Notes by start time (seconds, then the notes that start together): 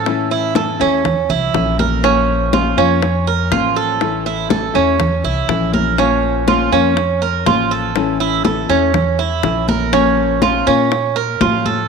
Already playing: A2 A4
0.06 E3 A3 C#4 E4, high bongo, high conga
0.31 E4, high bongo, high conga
0.55 E3 A3 C#4 E4 A4, high bongo, high conga
0.79 E2 A3 C#4 E4, high conga
1.05 muted nylon-string guitar stroke, high bongo, high conga, low conga
1.29 C2 E4, high bongo, high conga, low conga
1.53 A#1 E3 A3 C#4 E4, high bongo, low bongo, high conga
1.79 A#4, high bongo, high conga
2.03 F3 A#3 C#4 F4, high bongo, high conga
2.29 high conga
2.52 F3 A#3 C#4 F4, high bongo, high conga
2.77 F2 A#3 C#4 F4, high conga
3.02 muted nylon-string guitar stroke, high bongo, high conga
3.27 A#4, high conga
3.51 A1 F3 A#3 C#4 F4, high bongo, low bongo, high conga
3.76 A4
4.00 E3 A3 C#4 E4, high bongo, high conga
4.26 E4, high bongo, high conga
4.49 E3 A3 C#4 E4 A4, high bongo, high conga
4.74 E2 A3 C#4 E4, high conga
4.99 muted nylon-string guitar stroke, high bongo, high conga, low conga
5.24 C2 E4, high bongo, high conga
5.48 A#1 E3 A3 C#4 E4, high bongo, low bongo, high conga
5.74 A#4, high bongo, high conga
5.98 F3 A#3 C#4 F4, high bongo, high conga
6.23 high conga
6.47 F3 A#3 C#4 F4, high bongo, high conga
6.72 F2 A#3 C#4 F4, high conga
6.96 muted nylon-string guitar stroke, high bongo, high conga
7.22 A#4, high conga
7.46 A1 F3 A#3 C#4 F4, high bongo, low bongo, high conga
7.71 A4
7.95 E3 A3 C#4 E4, high bongo, high conga
8.20 E4, high bongo, high conga
8.44 E3 A3 C#4 E4 A4, high bongo, high conga
8.69 E2 A3 C#4 E4, high conga
8.94 muted nylon-string guitar stroke, high bongo, high conga, low conga
9.19 E4, high bongo, high conga
9.43 A#1 E3 A3 C#4 E4, high bongo, low bongo, high conga
9.68 A#4, high bongo, high conga
9.92 F3 A#3 C#4 F4, high bongo, high conga
10.17 high conga
10.42 F3 A#3 C#4 F4, high bongo, high conga
10.67 A#2 A#3 C#4 F4, high conga
10.91 muted nylon-string guitar stroke, high bongo, high conga
11.16 A#4, high conga
11.40 A2 F3 C#4 F4, high bongo, low bongo, high conga
11.66 A4, high conga